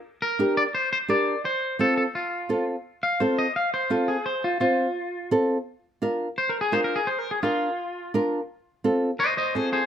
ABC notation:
X:1
M:4/4
L:1/8
Q:1/4=170
K:F
V:1 name="Clean electric guitar"
z B2 d c c d2 | c2 A A F3 z | z f c _e f c F _A | c F F4 z2 |
z4 (3c B _A (3c B A | (3c B _A F4 z2 | z4 [c_e] [ce] [_Ac] [Ac] |]
V:2 name="Nylon-string guitar"
z2 [DGB] z3 [DGB] z | z2 [CFA] z3 [CFA] z | z2 [CFA] z3 [CFA] z | z2 [CFc] z3 [CFA] z |
z2 [DFB] z3 [DFB] z | z2 [DFB] z3 [DFB] z | z2 [CFA] z3 [CFA] z |]